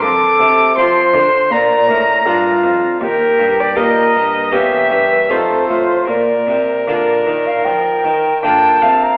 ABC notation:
X:1
M:4/4
L:1/16
Q:1/4=79
K:Bb
V:1 name="Violin"
d'4 c'4 b6- b z | B3 d e4 =e4 c4 | B12 g2 f2 |]
V:2 name="Flute"
A4 c4 d2 B2 F4 | G4 B4 G4 A2 F2 | d4 d3 f g4 a3 b |]
V:3 name="Harpsichord"
z4 [CF]4 z4 [DF]4 | z4 [EG]4 [B,^CG]4 [A,EF]4 | z4 [B,DF]4 z4 [B,DF]4 |]
V:4 name="Harpsichord" clef=bass
F,,2 C,2 F,2 D,2 B,,2 A,,2 G,,2 F,,2 | E,,2 G,,2 B,,2 G,,2 =E,,2 G,,2 F,,2 A,,2 | B,,2 C,2 D,2 E,2 F,2 E,2 D,2 C,2 |]
V:5 name="Cello" clef=bass
F,,2 C,2 F,2 D,2 B,,2 A,,2 G,,2 F,,2 | E,,2 G,,2 B,,2 G,,2 =E,,2 G,,2 F,,2 A,,2 | B,,2 C,2 D,2 E,2 F,2 E,2 D,2 C,2 |]